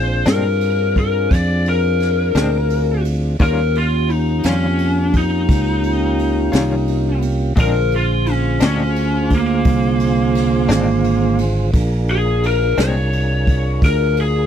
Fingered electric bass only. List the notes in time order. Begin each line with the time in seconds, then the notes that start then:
Already playing: A#1
0.26 G2
1.31 F2
2.35 D2
3.40 D#2
4.45 F2
5.49 C#2
6.53 C2
7.57 A#1
8.61 D2
9.65 C2
10.69 G#1
11.74 A#1
12.78 C2
13.82 D2